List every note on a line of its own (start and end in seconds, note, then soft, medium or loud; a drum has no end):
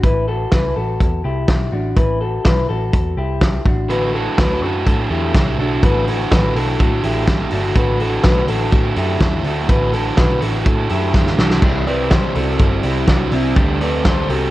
0.03 0.45 A1 loud
0.03 0.28 E4 medium
0.03 0.27 B4 medium
0.03 kick medium
0.03 closed hi-hat medium
0.28 0.52 F#4 medium
0.28 0.51 A4 medium
0.51 0.73 C2 medium
0.51 0.76 E4 medium
0.51 0.76 B4 medium
0.51 kick loud
0.51 snare loud
0.51 closed hi-hat medium
0.76 0.97 A1 medium
0.76 1.22 F#4 medium
0.76 1.22 A4 medium
1.00 1.21 E2 medium
1.00 kick medium
1.00 closed hi-hat medium
1.24 1.45 C2 medium
1.24 1.70 E4 medium
1.24 1.70 G4 medium
1.48 1.69 B1 medium
1.48 kick loud
1.48 snare loud
1.48 closed hi-hat medium
1.72 1.93 A1 medium
1.72 1.97 D4 medium
1.72 1.97 F#4 medium
1.96 2.38 A1 medium
1.96 2.21 E4 medium
1.96 2.20 B4 medium
1.96 kick medium
1.96 closed hi-hat medium
2.21 2.45 F#4 medium
2.21 2.45 A4 medium
2.45 2.66 B1 medium
2.45 2.69 E4 medium
2.45 2.69 B4 medium
2.45 kick medium
2.45 snare loud
2.45 closed hi-hat medium
2.69 2.90 A1 medium
2.69 3.15 F#4 medium
2.69 3.14 A4 medium
2.93 3.14 E2 medium
2.93 kick medium
2.93 closed hi-hat medium
3.17 3.58 C2 medium
3.17 3.63 E4 soft
3.17 3.63 G4 medium
3.41 kick medium
3.41 snare medium
3.41 closed hi-hat medium
3.66 4.27 A1 medium
3.66 3.91 D4 soft
3.66 3.89 F#4 medium
3.66 kick loud
3.89 4.14 A2 medium
3.89 4.14 D3 medium
3.89 4.14 D4 medium
3.89 4.14 E4 medium
3.89 4.14 F#4 medium
3.89 4.13 A4 medium
3.89 4.14 B4 medium
3.89 closed hi-hat medium
4.14 4.38 D4 soft
4.14 4.39 E4 medium
4.14 4.38 F#4 medium
4.14 4.38 A4 medium
4.38 4.62 D2 medium
4.38 4.62 A2 medium
4.38 4.62 D3 medium
4.38 4.63 D4 medium
4.38 4.62 E4 medium
4.38 4.62 F#4 medium
4.38 4.63 F#4 medium
4.38 4.61 A4 medium
4.38 4.62 B4 medium
4.38 kick loud
4.38 snare loud
4.38 closed hi-hat medium
4.62 4.83 F#2 medium
4.62 4.84 D4 soft
4.62 4.86 E4 medium
4.62 5.08 F#4 medium
4.62 4.85 F#4 soft
4.62 4.87 A4 soft
4.62 5.08 A4 medium
4.86 5.07 A2 medium
4.86 5.10 D4 medium
4.86 5.10 E4 medium
4.86 5.11 F#4 medium
4.86 5.09 A4 medium
4.86 kick medium
4.86 closed hi-hat medium
5.10 5.31 E2 medium
5.10 5.34 D4 soft
5.10 5.35 E4 medium
5.10 5.56 E4 soft
5.10 5.35 F#4 soft
5.10 5.56 G4 medium
5.10 5.35 A4 medium
5.34 5.55 C2 medium
5.34 5.59 A2 medium
5.34 5.59 D3 medium
5.34 5.59 D4 medium
5.34 5.59 E4 medium
5.34 5.59 F#4 medium
5.34 5.58 A4 medium
5.34 kick loud
5.34 snare medium
5.34 closed hi-hat medium
5.59 5.79 B1 medium
5.59 5.84 D4 medium
5.59 5.83 D4 soft
5.59 5.83 E4 medium
5.59 5.83 F#4 medium
5.59 5.84 F#4 soft
5.59 5.83 A4 soft
5.83 6.24 A1 medium
5.83 6.07 A2 medium
5.83 6.08 D3 medium
5.83 6.08 D4 medium
5.83 6.07 E4 medium
5.83 6.07 F#4 medium
5.83 6.08 F#4 medium
5.83 6.06 A4 medium
5.83 6.07 B4 medium
5.83 kick loud
5.83 closed hi-hat medium
6.07 6.31 D4 soft
6.07 6.31 E4 medium
6.07 6.31 F#4 medium
6.07 6.31 A4 medium
6.07 open hi-hat medium
6.31 6.52 A1 medium
6.31 6.55 A2 medium
6.31 6.56 D3 medium
6.31 6.56 D4 medium
6.31 6.55 E4 medium
6.31 6.55 F#4 medium
6.31 6.53 A4 medium
6.31 6.55 B4 medium
6.31 kick loud
6.31 snare loud
6.31 closed hi-hat medium
6.54 6.76 B1 medium
6.54 6.77 D4 soft
6.54 6.79 E4 medium
6.54 7.01 F#4 medium
6.54 6.78 F#4 soft
6.54 6.79 A4 soft
6.54 7.01 A4 medium
6.54 open hi-hat medium
6.78 7.00 A2 medium
6.78 7.03 D4 medium
6.78 7.03 E4 medium
6.78 7.04 F#4 medium
6.78 7.02 A4 medium
6.78 kick medium
6.78 closed hi-hat medium
7.03 7.45 A1 medium
7.03 7.27 D4 soft
7.03 7.28 E4 medium
7.03 7.50 E4 medium
7.03 7.27 F#4 medium
7.03 7.49 G4 medium
7.03 7.27 A4 soft
7.03 open hi-hat medium
7.27 7.52 A2 medium
7.27 7.52 D3 medium
7.27 7.52 D4 medium
7.27 7.51 E4 medium
7.27 7.52 F#4 medium
7.27 7.50 A4 medium
7.27 kick loud
7.27 snare loud
7.27 closed hi-hat medium
7.51 7.73 G1 medium
7.51 7.77 D4 soft
7.51 7.76 D4 soft
7.51 7.76 E4 medium
7.51 7.76 F#4 medium
7.51 7.76 F#4 soft
7.51 7.76 A4 medium
7.51 open hi-hat medium
7.76 8.17 A1 medium
7.76 8.00 A2 medium
7.76 8.00 D3 medium
7.76 8.01 D4 medium
7.76 8.00 E4 medium
7.76 8.00 F#4 medium
7.76 7.98 A4 medium
7.76 8.00 B4 medium
7.76 kick loud
7.76 closed hi-hat medium
8.00 8.24 D4 soft
8.00 8.24 E4 medium
8.00 8.24 F#4 medium
8.00 8.24 A4 medium
8.00 open hi-hat medium
8.23 8.45 B1 medium
8.23 8.48 A2 medium
8.23 8.48 D3 medium
8.23 8.49 D4 medium
8.23 8.48 E4 medium
8.23 8.49 F#4 medium
8.23 8.48 F#4 medium
8.23 8.47 A4 medium
8.23 8.48 B4 medium
8.23 kick loud
8.23 snare loud
8.23 closed hi-hat medium
8.48 8.69 A1 medium
8.48 8.71 D4 soft
8.48 8.72 E4 medium
8.48 8.94 F#4 medium
8.48 8.72 F#4 soft
8.48 8.72 A4 medium
8.48 8.94 A4 medium
8.48 open hi-hat medium
8.72 8.93 A2 medium
8.72 8.96 D4 medium
8.72 8.96 E4 medium
8.72 8.96 F#4 medium
8.72 8.95 A4 medium
8.72 kick medium
8.72 closed hi-hat medium
8.96 9.17 F#2 loud
8.96 9.20 D4 soft
8.96 9.21 E4 soft
8.96 9.43 E4 medium
8.96 9.20 F#4 soft
8.96 9.42 G4 medium
8.96 9.21 A4 medium
8.96 open hi-hat medium
9.20 9.41 E2 medium
9.20 9.45 A2 medium
9.20 9.45 D3 medium
9.20 9.45 D4 medium
9.20 9.44 E4 medium
9.20 9.45 F#4 medium
9.20 9.43 A4 medium
9.20 kick loud
9.20 snare medium
9.20 closed hi-hat medium
9.44 9.66 D2 medium
9.44 9.70 D4 soft
9.44 9.67 D4 soft
9.44 9.68 E4 soft
9.44 9.69 F#4 medium
9.44 9.68 F#4 soft
9.44 9.69 A4 soft
9.44 open hi-hat medium
9.68 10.10 A1 medium
9.68 9.93 A2 medium
9.68 9.93 D3 medium
9.68 9.93 D4 medium
9.68 9.92 E4 medium
9.68 9.93 F#4 medium
9.68 9.91 A4 medium
9.68 9.93 B4 medium
9.68 kick loud
9.68 closed hi-hat medium
9.92 10.16 D4 soft
9.92 10.17 E4 soft
9.92 10.16 F#4 medium
9.92 10.17 F#4 medium
9.92 10.17 A4 medium
9.92 open hi-hat medium
10.16 10.38 B1 medium
10.16 10.41 A2 medium
10.16 10.41 D3 medium
10.16 10.42 D4 medium
10.16 10.40 E4 medium
10.16 10.41 F#4 medium
10.16 10.39 A4 medium
10.16 10.41 B4 medium
10.16 kick medium
10.16 snare loud
10.16 closed hi-hat medium
10.41 10.62 A1 medium
10.41 10.63 D4 soft
10.41 10.65 E4 medium
10.41 10.87 F#4 medium
10.41 10.64 F#4 soft
10.41 10.65 A4 medium
10.41 10.87 A4 medium
10.41 open hi-hat medium
10.64 10.87 A2 medium
10.64 10.89 D4 soft
10.64 10.89 E4 medium
10.64 10.89 F#4 medium
10.64 10.88 A4 medium
10.64 kick medium
10.64 closed hi-hat medium
10.89 11.32 F#2 medium
10.89 11.13 D4 soft
10.89 11.14 E4 soft
10.89 11.36 E4 medium
10.89 11.14 F#4 soft
10.89 11.36 G4 medium
10.89 11.14 A4 medium
10.89 open hi-hat medium
11.14 11.38 A2 medium
11.14 11.38 D3 medium
11.14 11.39 D4 medium
11.14 11.38 E4 medium
11.14 11.39 F#4 medium
11.14 11.37 A4 medium
11.14 kick medium
11.14 snare soft
11.26 snare soft
11.39 11.59 B1 medium
11.39 11.63 D4 soft
11.39 11.63 E4 soft
11.39 11.63 F#4 medium
11.39 11.63 F#4 soft
11.39 11.63 A4 medium
11.39 snare medium
11.51 snare medium
11.62 12.20 C2 medium
11.62 11.87 C3 medium
11.62 11.87 E3 medium
11.62 11.87 G3 medium
11.62 11.87 C4 medium
11.62 11.87 E4 medium
11.62 11.86 E4 medium
11.62 11.87 G4 loud
11.62 11.85 D5 medium
11.62 kick loud
11.62 crash medium
11.86 12.10 G3 soft
11.86 12.11 C4 medium
11.86 12.11 E4 medium
11.86 12.12 B4 medium
11.86 12.11 D5 medium
11.86 open hi-hat medium
12.10 12.35 C3 medium
12.10 12.35 E3 medium
12.10 12.36 G3 medium
12.10 12.35 C4 medium
12.10 12.35 E4 medium
12.10 12.35 G4 medium
12.10 12.35 C5 medium
12.10 12.33 D5 medium
12.10 kick medium
12.10 snare loud
12.10 closed hi-hat medium
12.34 12.56 C2 medium
12.34 12.58 G3 soft
12.34 12.59 C4 medium
12.34 12.59 E4 soft
12.34 12.81 F#4 soft
12.34 12.81 A4 medium
12.34 12.59 D5 soft
12.34 open hi-hat medium
12.59 12.80 G1 medium
12.59 12.83 G3 soft
12.59 12.84 C4 medium
12.59 12.83 E4 medium
12.59 12.82 D5 medium
12.59 kick loud
12.59 closed hi-hat medium
12.83 13.04 C2 loud
12.83 13.08 G3 soft
12.83 13.08 C4 medium
12.83 13.08 E4 medium
12.83 13.08 E4 soft
12.83 13.08 G4 medium
12.83 13.08 D5 soft
12.83 open hi-hat medium
13.07 13.29 C2 medium
13.07 13.32 C3 medium
13.07 13.32 E3 medium
13.07 13.32 G3 medium
13.07 13.33 C4 medium
13.07 13.32 D4 medium
13.07 13.31 E4 medium
13.07 13.32 F#4 medium
13.07 13.31 D5 medium
13.07 kick medium
13.07 snare medium
13.07 closed hi-hat medium
13.32 13.53 C2 medium
13.32 13.55 G3 soft
13.32 13.57 C4 medium
13.32 13.56 C4 soft
13.32 13.56 E4 medium
13.32 13.56 D5 medium
13.32 open hi-hat medium
13.56 14.25 D2 loud
13.56 13.80 D3 medium
13.56 13.81 G3 medium
13.56 13.81 C4 medium
13.56 13.81 D4 medium
13.56 13.80 G4 medium
13.56 13.79 A4 medium
13.56 kick loud
13.56 closed hi-hat medium
13.80 14.04 C4 soft
13.80 14.05 G4 medium
13.80 14.04 A4 medium
13.80 14.05 B4 medium
13.80 14.04 D5 medium
13.80 open hi-hat medium
14.04 14.28 D3 medium
14.04 14.29 G3 medium
14.04 14.29 C4 medium
14.04 14.29 G4 medium
14.04 14.27 A4 medium
14.04 14.29 C5 medium
14.04 kick loud
14.04 snare loud
14.04 closed hi-hat medium
14.28 14.49 C2 medium
14.28 14.51 C4 soft
14.28 14.51 F#4 medium
14.28 14.51 G4 medium
14.28 14.51 A4 soft
14.28 14.51 A4 medium
14.28 open hi-hat medium